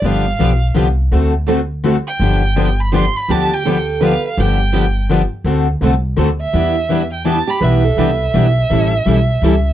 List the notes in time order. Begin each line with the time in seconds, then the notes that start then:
0.02 G1 D3 F3 B3 D4 G4
0.06 F5
0.39 B1 D3 F3 B3 D4 G4
0.75 C2 D3 F3 B3 D4 G4
1.12 D2 D3 A3 C4 F#4 A4
1.47 D3 A3 C4 F#4 A4
1.84 D3 A3 C4 F#4 A4
2.07 G5
2.19 G1 D3 F3 B3 D4 G4
2.56 D3 F3 B3 D4 G4
2.80 B5
2.92 D3 F3 B3 D4 G4 C6
3.16 B5
3.28 D2 D3 F3 B3 D4 G4 A5
3.54 G5
3.65 D3 F3 B3 D4 G4 A4
4.01 D3 F3 B3 D4 G4 B4
4.05 F5
4.28 F5
4.37 G1 D3 F3 B3 D4 G4 G5
4.73 D3 F3 B3 D4 G4
5.11 D3 F3 B3 D4 G4
5.44 D2 D3 A3 C4 F#4 A4
5.81 C2 D3 A3 C4 F#4 A4
6.17 D2 D3 A3 C4 F#4 A4
6.41 E5
6.53 E2 E3 G3 B3 D4 E4 G4 B4
6.90 E3 G3 B3 D4 E4 G4 B4
7.13 G5
7.25 E3 G3 B3 D4 E4 G4 B4 A5
7.47 G4 B5
7.61 B1 E3 G3 B3 D4 E4 G4 B4 E5
7.84 A4
7.97 C2 E3 G3 B3 D4 E4 G4 B4
8.34 B1 E3 G3 B3 D4 E4 G4 B4
8.71 A1 E3 G3 C#4 E4 A4
9.06 B1 E3 G3 C#4 E4 A4
9.42 C#2 E3 G3 C#4 E4 A4